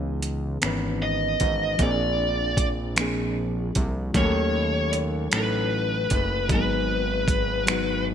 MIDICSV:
0, 0, Header, 1, 5, 480
1, 0, Start_track
1, 0, Tempo, 784314
1, 1098, Time_signature, 6, 3, 24, 8
1, 4984, End_track
2, 0, Start_track
2, 0, Title_t, "Lead electric guitar"
2, 0, Program_c, 0, 29
2, 627, Note_on_c, 0, 75, 86
2, 1114, Note_off_c, 0, 75, 0
2, 1117, Note_on_c, 0, 74, 71
2, 1623, Note_off_c, 0, 74, 0
2, 2550, Note_on_c, 0, 73, 89
2, 2999, Note_off_c, 0, 73, 0
2, 3267, Note_on_c, 0, 71, 95
2, 3958, Note_off_c, 0, 71, 0
2, 3989, Note_on_c, 0, 71, 78
2, 4919, Note_off_c, 0, 71, 0
2, 4984, End_track
3, 0, Start_track
3, 0, Title_t, "Reed electric piano"
3, 0, Program_c, 1, 4
3, 0, Control_c, 1, 64, 127
3, 0, Note_on_c, 1, 52, 84
3, 0, Note_on_c, 1, 59, 71
3, 0, Note_on_c, 1, 61, 81
3, 0, Note_on_c, 1, 63, 75
3, 0, Note_on_c, 1, 68, 98
3, 191, Note_off_c, 1, 59, 0
3, 196, Note_off_c, 1, 61, 0
3, 200, Note_off_c, 1, 63, 0
3, 204, Note_off_c, 1, 68, 0
3, 206, Note_off_c, 1, 52, 0
3, 367, Note_on_c, 1, 51, 57
3, 377, Note_on_c, 1, 59, 70
3, 385, Note_on_c, 1, 61, 70
3, 395, Note_on_c, 1, 63, 64
3, 404, Note_on_c, 1, 71, 87
3, 407, Note_on_c, 1, 52, 73
3, 412, Note_off_c, 1, 51, 0
3, 912, Note_off_c, 1, 59, 0
3, 916, Note_off_c, 1, 61, 0
3, 921, Note_off_c, 1, 63, 0
3, 925, Note_off_c, 1, 71, 0
3, 927, Note_off_c, 1, 52, 0
3, 1086, Note_on_c, 1, 53, 67
3, 1096, Note_on_c, 1, 58, 63
3, 1103, Note_on_c, 1, 60, 69
3, 1106, Control_c, 1, 64, 0
3, 1113, Note_on_c, 1, 62, 63
3, 1121, Note_on_c, 1, 68, 81
3, 1204, Control_c, 1, 64, 127
3, 1626, Note_off_c, 1, 53, 0
3, 1631, Note_off_c, 1, 58, 0
3, 1635, Note_off_c, 1, 60, 0
3, 1640, Note_off_c, 1, 62, 0
3, 1644, Note_off_c, 1, 68, 0
3, 1807, Note_on_c, 1, 53, 69
3, 1816, Note_on_c, 1, 58, 75
3, 1824, Note_on_c, 1, 60, 61
3, 1834, Note_on_c, 1, 62, 66
3, 1842, Note_on_c, 1, 68, 80
3, 2346, Note_off_c, 1, 53, 0
3, 2351, Note_off_c, 1, 58, 0
3, 2355, Note_off_c, 1, 60, 0
3, 2360, Note_off_c, 1, 62, 0
3, 2364, Note_off_c, 1, 68, 0
3, 2524, Note_on_c, 1, 54, 71
3, 2533, Note_on_c, 1, 57, 69
3, 2543, Note_on_c, 1, 61, 69
3, 2545, Control_c, 1, 64, 0
3, 2551, Note_on_c, 1, 63, 67
3, 2560, Note_on_c, 1, 68, 67
3, 2589, Note_off_c, 1, 68, 0
3, 2601, Note_on_c, 1, 69, 91
3, 2634, Control_c, 1, 64, 127
3, 3065, Note_off_c, 1, 54, 0
3, 3070, Note_off_c, 1, 57, 0
3, 3075, Note_off_c, 1, 61, 0
3, 3079, Note_off_c, 1, 63, 0
3, 3104, Note_off_c, 1, 69, 0
3, 3248, Note_on_c, 1, 54, 61
3, 3258, Note_on_c, 1, 57, 58
3, 3265, Note_on_c, 1, 61, 56
3, 3275, Note_on_c, 1, 63, 60
3, 3282, Note_on_c, 1, 69, 77
3, 3787, Note_off_c, 1, 54, 0
3, 3792, Note_off_c, 1, 57, 0
3, 3796, Note_off_c, 1, 61, 0
3, 3801, Note_off_c, 1, 63, 0
3, 3804, Note_off_c, 1, 69, 0
3, 3966, Note_on_c, 1, 54, 73
3, 3975, Note_on_c, 1, 56, 71
3, 3985, Note_on_c, 1, 58, 54
3, 3987, Control_c, 1, 64, 0
3, 3994, Note_on_c, 1, 63, 68
3, 4002, Note_on_c, 1, 68, 85
3, 4021, Note_off_c, 1, 58, 0
3, 4024, Note_on_c, 1, 59, 61
3, 4083, Control_c, 1, 64, 127
3, 4506, Note_off_c, 1, 54, 0
3, 4511, Note_off_c, 1, 56, 0
3, 4520, Note_off_c, 1, 63, 0
3, 4524, Note_off_c, 1, 68, 0
3, 4535, Note_off_c, 1, 59, 0
3, 4685, Note_on_c, 1, 54, 73
3, 4695, Note_on_c, 1, 56, 63
3, 4703, Note_on_c, 1, 59, 61
3, 4711, Note_on_c, 1, 63, 63
3, 4723, Note_on_c, 1, 66, 80
3, 4984, Note_off_c, 1, 54, 0
3, 4984, Note_off_c, 1, 56, 0
3, 4984, Note_off_c, 1, 59, 0
3, 4984, Note_off_c, 1, 63, 0
3, 4984, Note_off_c, 1, 66, 0
3, 4984, End_track
4, 0, Start_track
4, 0, Title_t, "Analog synth bass"
4, 0, Program_c, 2, 38
4, 0, Note_on_c, 2, 37, 93
4, 356, Note_off_c, 2, 37, 0
4, 389, Note_on_c, 2, 32, 77
4, 839, Note_off_c, 2, 32, 0
4, 865, Note_on_c, 2, 32, 89
4, 1078, Note_off_c, 2, 32, 0
4, 1101, Note_on_c, 2, 34, 100
4, 2275, Note_off_c, 2, 34, 0
4, 2306, Note_on_c, 2, 36, 81
4, 2518, Note_off_c, 2, 36, 0
4, 2540, Note_on_c, 2, 39, 110
4, 3234, Note_off_c, 2, 39, 0
4, 3264, Note_on_c, 2, 33, 89
4, 3717, Note_off_c, 2, 33, 0
4, 3745, Note_on_c, 2, 30, 91
4, 3979, Note_on_c, 2, 32, 115
4, 3988, Note_off_c, 2, 30, 0
4, 4984, Note_off_c, 2, 32, 0
4, 4984, End_track
5, 0, Start_track
5, 0, Title_t, "Drums"
5, 138, Note_on_c, 9, 42, 65
5, 199, Note_off_c, 9, 42, 0
5, 378, Note_on_c, 9, 42, 65
5, 385, Note_on_c, 9, 26, 85
5, 439, Note_off_c, 9, 42, 0
5, 446, Note_off_c, 9, 26, 0
5, 856, Note_on_c, 9, 42, 73
5, 862, Note_on_c, 9, 36, 75
5, 917, Note_off_c, 9, 42, 0
5, 923, Note_off_c, 9, 36, 0
5, 1095, Note_on_c, 9, 42, 59
5, 1096, Note_on_c, 9, 36, 85
5, 1156, Note_off_c, 9, 42, 0
5, 1157, Note_off_c, 9, 36, 0
5, 1574, Note_on_c, 9, 36, 82
5, 1577, Note_on_c, 9, 42, 73
5, 1635, Note_off_c, 9, 36, 0
5, 1638, Note_off_c, 9, 42, 0
5, 1814, Note_on_c, 9, 42, 67
5, 1821, Note_on_c, 9, 26, 100
5, 1875, Note_off_c, 9, 42, 0
5, 1883, Note_off_c, 9, 26, 0
5, 2296, Note_on_c, 9, 42, 75
5, 2301, Note_on_c, 9, 36, 81
5, 2357, Note_off_c, 9, 42, 0
5, 2362, Note_off_c, 9, 36, 0
5, 2536, Note_on_c, 9, 36, 86
5, 2536, Note_on_c, 9, 42, 53
5, 2597, Note_off_c, 9, 36, 0
5, 2598, Note_off_c, 9, 42, 0
5, 3016, Note_on_c, 9, 42, 72
5, 3078, Note_off_c, 9, 42, 0
5, 3253, Note_on_c, 9, 42, 72
5, 3260, Note_on_c, 9, 26, 108
5, 3314, Note_off_c, 9, 42, 0
5, 3322, Note_off_c, 9, 26, 0
5, 3734, Note_on_c, 9, 42, 69
5, 3740, Note_on_c, 9, 36, 81
5, 3795, Note_off_c, 9, 42, 0
5, 3801, Note_off_c, 9, 36, 0
5, 3974, Note_on_c, 9, 42, 56
5, 3975, Note_on_c, 9, 36, 86
5, 4035, Note_off_c, 9, 42, 0
5, 4036, Note_off_c, 9, 36, 0
5, 4453, Note_on_c, 9, 36, 86
5, 4457, Note_on_c, 9, 42, 65
5, 4514, Note_off_c, 9, 36, 0
5, 4518, Note_off_c, 9, 42, 0
5, 4695, Note_on_c, 9, 42, 65
5, 4703, Note_on_c, 9, 26, 99
5, 4756, Note_off_c, 9, 42, 0
5, 4764, Note_off_c, 9, 26, 0
5, 4984, End_track
0, 0, End_of_file